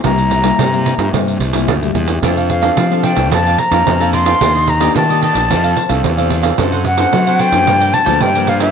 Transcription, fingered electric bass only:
X:1
M:4/4
L:1/16
Q:1/4=110
K:F
V:1 name="Fingered electric bass" clef=bass
C,,4 C,3 G,, G,,2 C,,2 D,,2 E,,2 | F,,4 F,3 C,, F,,2 z F,, F,,4 | _E,,4 _E,3 B,,, F,,2 z C,, =E,,4 | ^F,,4 ^F,3 F,, G,,2 z D,, G,,4 |]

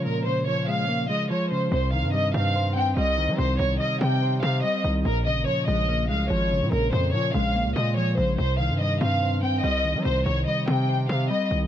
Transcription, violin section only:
X:1
M:4/4
L:1/8
Q:1/4=144
K:Cphr
V:1 name="Violin section"
B c d f2 e d c | c f e f2 g e2 | c d e g2 f e z | B e d e2 f d2 |
B c d f2 e d c | c f e f2 g e2 | c d e g2 f e z |]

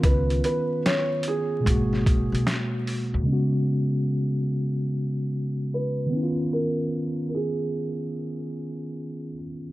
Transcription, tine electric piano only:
X:1
M:4/4
L:1/8
Q:"Swing 16ths" 1/4=74
K:G#dor
V:1 name="Tine electric piano"
[D,B,CE]4 [B,,G,A,F]4 | [C,G,B,CF]6- [C,G,B,CF] [D,B,C=E^E]- | [D,B,C=E^E]6- [D,B,C=E^E] z |]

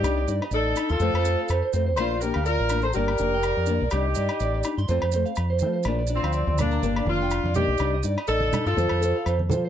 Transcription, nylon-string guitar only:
X:1
M:4/4
L:1/8
Q:"Swing 16ths" 1/4=124
K:Bb
V:1 name="Nylon-string guitar"
[G,D] [DE] z [DE] [F,A,C] [A,C] z [A,C] | [F,B,D] [B,D] z [B,D] [G,B,D] [B,D] z [B,D] | [G,D] D z [DE] [F,A,C] [A,C] z [A,C] | [F,B,D] D z [B,D] [G,B,D] [B,D] z [B,D] |
[G,DE] [DE] z [DE] [CFA] [FA] z [FA] |]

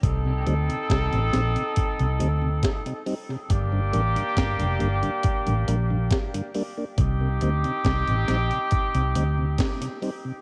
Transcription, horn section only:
X:1
M:4/4
L:1/8
Q:1/4=69
K:Cdor
V:1 name="Horn section"
[CEA]6- [CEA] z | [B,DG]6- [B,DG] z | [CEG]6- [CEG] z |]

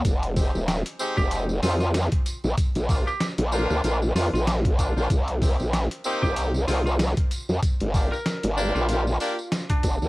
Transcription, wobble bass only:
X:1
M:4/4
L:1/16
Q:"Swing 16ths" 1/4=95
K:Cm
V:1 name="Wobble bass" clef=bass
F,,,3 E,,,2 z2 F,,,3 F,,3 z2 B,,, | z B,,,2 z2 B,,,2 D,, B,,,2 F,, B,,,4 B,,, | C,,3 B,,,2 z2 C,,3 C,,3 z2 F,, | z G,,,2 z2 G,,,2 B,,,3 z4 G,,, D,, |]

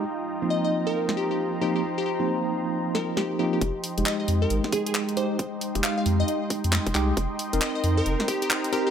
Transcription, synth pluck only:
X:1
M:4/4
L:1/16
Q:"Swing 16ths" 1/4=135
K:Fm
V:1 name="Synth pluck"
z4 e e z B z2 G G z2 G G | z G G z6 z B z G2 G G | z4 e e z B z2 A A z2 c2- | c2 z2 f f z e3 z6 |
z4 e e z B z2 G G z2 G G |]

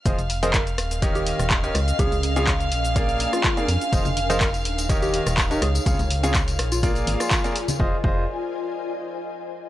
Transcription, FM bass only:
X:1
M:4/4
L:1/16
Q:"Swing 16ths" 1/4=124
K:Fm
V:1 name="FM bass" clef=bass
F,,, F,,,4- F,,, E,,,4- E,,, E,,,3 D,, z | D,, D,,4- D,, B,,,4- B,,, z3 F,, z | F,,, F,,,4- F,,, E,,,4- E,,, E,,,3 D,, z | D,, D,,4- D,, B,,,4 A,,, z4 z |
F,,, z F,,,2 z12 |]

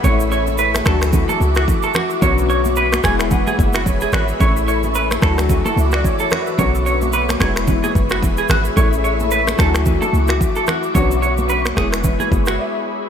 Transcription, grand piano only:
X:1
M:4/4
L:1/16
Q:"Swing 16ths" 1/4=110
K:A
V:1 name="Grand piano"
z16 | z6 g2 f2 e2 c2 B2 | z8 z2 e d c2 B A- | A z12 z3 |
z16 | z12 e4 |]
V:2 name="Grand piano"
[A,CE]6 [E,F,A,DF]8- [E,F,A,DF]2 | [D,F,B,CF]6 [G,B,E]8- [G,B,E]2 | [A,CE]6 [E,F,A,DEF]8- [E,F,A,DEF]2 | [D,F,B,CF]6 [G,B,^DE]8- [G,B,DE]2 |
[A,CE]6 [E,F,A,DEF]8- [E,F,A,DEF]2 | [D,F,B,CF]6 [G,B,E]8- [G,B,E]2 |]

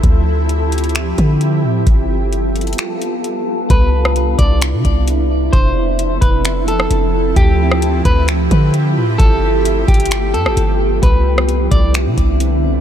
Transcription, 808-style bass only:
X:1
M:4/4
L:1/16
Q:1/4=131
K:C
V:1 name="808-style bass" clef=bass
D,,8- D,,2 D,4 A,,2 | G,,,8 z8 | C,,6 C,,3 C, C,,6 | F,,,6 F,,,6 F,,,4 |
D,,6 D,,4 D,4 A,,2 | G,,,6 G,,,4 G,, G,,, G,,,4 | C,,6 C,,3 C, C,,6 |]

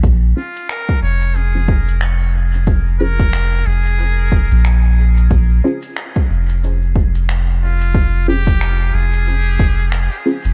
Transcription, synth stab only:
X:1
M:4/4
L:1/16
Q:"Swing 16ths" 1/4=91
K:Bbdor
V:1 name="Synth stab"
z2 [DFAc] z6 [DFAc] z6 | z2 [DFAc] z12 z | z2 [DFAc] z12 z | z2 [DFAc] z8 z3 [DFAc] z |]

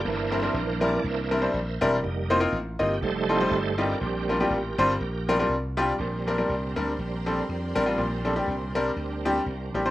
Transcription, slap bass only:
X:1
M:4/4
L:1/8
Q:"Swing" 1/4=121
K:Bb
V:1 name="Slap bass" clef=bass
G,,,2 B,,,2 C,,2 B,,, =E,,, | F,,,2 A,,, G,,, F,,,2 G,,,2 | B,,,2 A,,, G,,, B,,,2 C,,2 | B,,,2 C,, D,, B,,,2 F,, A,,, |
B,,,2 C,,2 D,,2 C,, A,,, |]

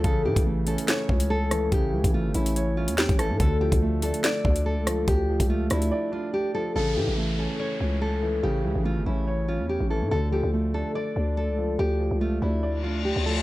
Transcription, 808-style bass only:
X:1
M:4/4
L:1/16
Q:1/4=143
K:Dm
V:1 name="808-style bass" clef=bass
A,,,2 A,, A,,,4 z3 ^C,,6 | A,,,2 ^C,, A,,,2 G,,, A,,,4- A,,, E,,2 A,,,2 A,, | D,,3 D,,4 z3 D,,3 ^C,,3 | D,,3 ^C,,3 D,,2 z8 |
A,,,2 A,, A,,,4 z3 ^C,,6 | A,,,2 ^C,, A,,,2 G,,, A,,,4- A,,, E,,2 A,,,2 A,, | D,,3 D,,4 z3 D,,3 ^C,,3 | D,,3 ^C,,3 D,,6- D,, D,,3 |]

